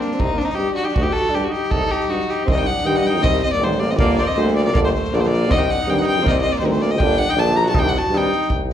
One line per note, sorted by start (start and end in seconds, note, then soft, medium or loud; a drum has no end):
0.00 0.16 A#3 medium
0.00 0.21 D4 medium
0.00 snare soft
0.11 0.35 C4 medium
0.11 snare soft
0.19 0.30 C2 medium
0.19 0.40 D#4 medium
0.19 kick medium
0.34 0.44 A#3 medium
0.38 0.46 D4 medium
0.38 snare soft
0.43 0.53 C4 medium
0.43 0.56 D#4 medium
0.49 0.71 D#4 medium
0.49 snare soft
0.55 0.68 G2 medium
0.55 0.74 G4 medium
0.55 snare soft
0.72 0.85 D4 medium
0.72 0.86 F#4 medium
0.77 snare soft
0.84 0.90 D#4 medium
0.84 0.96 G4 medium
0.88 1.03 D4 medium
0.88 snare soft
0.94 1.07 D2 medium
0.94 1.04 F#4 loud
0.94 kick medium
1.02 1.11 D#4 medium
1.02 1.14 G4 medium
1.09 1.31 F#4 medium
1.09 1.36 A4 loud
1.16 snare soft
1.25 snare soft
1.30 1.40 D4 medium
1.34 1.46 G2 medium
1.34 1.46 G4 medium
1.34 snare soft
1.40 1.51 D4 medium
1.45 1.53 F#4 medium
1.50 1.69 D#4 medium
1.50 1.72 G4 medium
1.50 snare soft
1.63 snare soft
1.69 1.86 D#4 medium
1.69 1.93 A4 loud
1.69 kick medium
1.73 1.84 C2 medium
1.86 2.08 D#4 medium
1.91 2.11 G4 medium
1.91 snare soft
2.00 snare soft
2.08 2.20 G2 medium
2.08 2.26 D#4 medium
2.08 2.32 F#4 medium
2.08 snare soft
2.20 snare soft
2.26 2.45 D#4 medium
2.26 snare soft
2.30 2.49 G4 medium
2.46 2.69 C2 medium
2.46 2.63 D#3 medium
2.46 2.64 G3 medium
2.46 2.57 C4 medium
2.46 kick loud
2.50 2.59 D#5 medium
2.56 2.66 D#4 medium
2.56 2.68 G5 medium
2.56 snare soft
2.64 2.87 D4 medium
2.64 2.88 F#5 medium
2.64 snare soft
2.77 snare soft
2.84 3.24 G2 loud
2.84 3.00 D#3 medium
2.84 3.02 G3 medium
2.84 2.99 D#4 medium
2.84 2.98 G5 medium
2.84 snare soft
2.95 3.00 D4 medium
2.95 3.03 D#5 medium
2.95 3.00 F#5 medium
2.95 snare soft
3.02 3.09 D4 medium
3.02 3.08 F#5 medium
3.02 snare soft
3.07 3.23 D#4 medium
3.07 3.22 G5 medium
3.16 snare soft
3.21 3.43 C2 medium
3.21 3.36 D#3 medium
3.21 3.39 G3 medium
3.21 3.41 C4 loud
3.21 3.41 D#5 loud
3.21 kick loud
3.36 snare soft
3.43 3.52 C4 medium
3.43 3.52 D#5 loud
3.43 snare soft
3.52 3.64 A#3 medium
3.52 3.66 D5 medium
3.52 snare soft
3.59 4.01 A1 loud
3.59 3.75 D#3 medium
3.59 3.77 G3 medium
3.59 3.82 G3 medium
3.59 snare soft
3.64 3.81 C5 medium
3.71 snare soft
3.80 3.92 A#3 medium
3.80 3.93 D5 medium
3.80 snare soft
3.90 3.99 C4 medium
3.90 3.97 D#5 medium
3.90 snare soft
3.97 4.20 G1 loud
3.97 4.13 D3 medium
3.97 4.14 A#3 medium
3.97 4.17 A#3 loud
3.97 4.16 D5 medium
3.97 kick loud
4.09 snare soft
4.16 4.21 C5 medium
4.16 4.20 D5 medium
4.16 4.29 D5 medium
4.16 snare soft
4.21 4.22 A#3 medium
4.21 4.29 A#3 medium
4.27 4.38 C4 medium
4.27 4.37 D#5 loud
4.27 snare soft
4.35 4.77 D2 loud
4.35 4.51 D3 medium
4.35 4.56 G3 medium
4.35 4.52 A#3 medium
4.35 4.55 C5 medium
4.35 snare soft
4.47 snare soft
4.56 4.65 A#3 medium
4.56 4.65 D5 medium
4.56 snare soft
4.65 4.72 A#3 medium
4.65 4.74 D5 medium
4.65 snare soft
4.73 4.96 G1 loud
4.73 4.89 D3 medium
4.73 4.78 A#3 medium
4.73 4.90 A#3 medium
4.73 4.80 D5 loud
4.73 kick loud
4.83 4.92 A3 medium
4.83 4.93 C5 medium
4.83 snare soft
4.94 5.13 A3 medium
4.94 5.16 C5 medium
4.94 snare soft
5.04 snare soft
5.12 5.51 A#1 loud
5.12 5.27 D3 medium
5.12 5.18 A#3 medium
5.12 5.28 A#3 medium
5.12 5.22 D5 medium
5.12 snare soft
5.17 5.27 A3 medium
5.17 5.28 C5 medium
5.23 5.51 A#3 medium
5.23 snare soft
5.27 5.53 D5 loud
5.32 snare soft
5.42 snare soft
5.49 5.70 C2 medium
5.49 5.64 D#3 medium
5.49 5.54 C4 loud
5.49 5.65 C4 medium
5.49 5.56 D4 medium
5.49 5.55 D#5 loud
5.49 kick loud
5.54 5.59 C4 loud
5.54 5.68 D#4 medium
5.54 5.60 D#5 loud
5.54 5.57 F#5 medium
5.58 5.72 G5 loud
5.58 snare soft
5.66 5.84 D4 medium
5.66 snare soft
5.71 5.91 F#5 loud
5.80 5.97 D#4 medium
5.80 snare soft
5.87 6.26 G2 loud
5.87 6.02 D#3 medium
5.87 6.03 C4 medium
5.87 6.00 G5 loud
5.87 snare soft
5.95 6.00 D4 medium
5.95 6.06 F#5 medium
6.00 6.23 D#4 medium
6.00 snare soft
6.07 6.29 G5 loud
6.07 snare soft
6.19 6.38 D#3 medium
6.19 6.26 C4 medium
6.19 snare soft
6.24 6.45 C2 loud
6.24 6.33 A#3 medium
6.24 6.41 C4 medium
6.24 6.32 D#5 loud
6.24 kick loud
6.30 6.41 C4 medium
6.30 6.36 D5 medium
6.35 6.41 D#5 loud
6.35 snare soft
6.42 6.53 C4 medium
6.42 6.54 D#5 loud
6.47 snare soft
6.52 6.60 A#3 medium
6.52 6.59 D5 loud
6.52 snare soft
6.59 7.03 D2 loud
6.59 6.77 D#3 medium
6.59 6.66 G3 medium
6.59 6.78 C4 medium
6.59 6.67 C5 medium
6.59 snare soft
6.66 6.75 G3 medium
6.66 6.74 A#4 medium
6.72 6.84 A3 medium
6.72 6.83 C5 medium
6.72 snare soft
6.81 6.94 A#3 medium
6.81 6.92 D5 medium
6.81 snare soft
6.91 7.03 C4 medium
6.91 7.00 D#5 loud
6.99 7.21 G1 loud
6.99 7.14 D3 medium
6.99 7.16 A#3 medium
6.99 7.18 D4 loud
6.99 7.20 G5 loud
6.99 kick medium
7.11 snare soft
7.18 7.31 D4 loud
7.18 7.32 F#5 loud
7.18 snare soft
7.29 7.37 D#4 medium
7.29 7.41 G5 loud
7.29 snare soft
7.35 7.75 A#1 loud
7.35 7.52 D3 medium
7.35 7.53 A#3 medium
7.35 7.56 D4 loud
7.35 7.58 A5 loud
7.35 snare soft
7.47 snare soft
7.54 7.63 G4 loud
7.54 7.66 A#5 loud
7.54 snare soft
7.63 7.76 F#4 medium
7.63 snare soft
7.69 7.94 C2 loud
7.69 7.81 A5 medium
7.74 7.89 D#3 medium
7.74 7.90 C4 medium
7.74 7.85 D#4 loud
7.74 kick loud
7.79 7.91 G5 loud
7.84 7.98 D4 medium
7.89 8.00 F#5 medium
7.93 8.16 F#4 medium
7.93 snare soft
7.98 8.18 A5 loud
8.11 8.32 G2 loud
8.11 8.27 D#3 medium
8.11 8.29 C4 medium
8.11 8.51 D#4 medium
8.11 snare soft
8.17 8.52 G5 loud
8.32 snare soft
8.41 snare soft
8.49 8.73 C2 medium
8.49 kick medium
8.70 snare soft